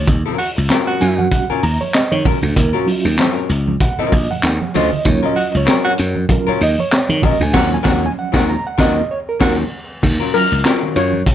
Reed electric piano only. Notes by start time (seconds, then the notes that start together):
1.00 F#3 C#4 F#4 G#5
1.18 F#5
1.32 F#5
1.50 G#5
1.63 A#5
1.81 C#5
1.94 D#5
2.12 C#5
2.26 A#4
2.56 A#4
2.74 F#4
2.86 F#3 C#4 F4
3.81 F#5
3.99 D#5
4.31 F#5
4.76 D#5
5.06 F#3 C#4 F4 C#5
5.26 D#5
5.57 C#5
6.29 F#3 C#4 F4 A#4
6.49 C#5
6.63 D#5
6.80 C#5
7.25 D#5
7.43 G#5
7.54 F3 F#3 C#4 F#5
7.74 G#5
7.88 F#5
8.06 G#5
8.19 F#5
8.50 A#5
8.67 F#5
8.80 D#5
9.11 C#5
9.29 A#4
9.42 A#4
10.03 D#3
10.21 C#4 F4
10.34 F#3 C#4 F4
10.65 C#4 F4
10.83 D#3
10.96 C#4 F4